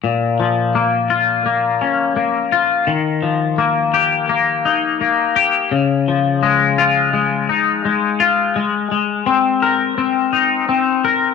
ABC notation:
X:1
M:4/4
L:1/8
Q:1/4=84
K:Bbdor
V:1 name="Clean electric guitar"
B,, F, B, F B, D B, F | E, F, B, G B, E B, G | D, F, A, F A, E A, F | A, A, C B C E C B |]